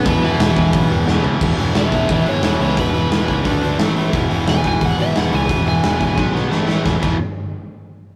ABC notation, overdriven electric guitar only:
X:1
M:4/4
L:1/8
Q:1/4=176
K:E
V:1 name="Overdriven electric guitar"
[B,B] [E,E]4 z3 | z2 [Ge] [Ge] [Ge] [Ec] [Ec] [Ec] | B6 z2 | z2 g g f e f g- |
g g4 z3 | z8 |]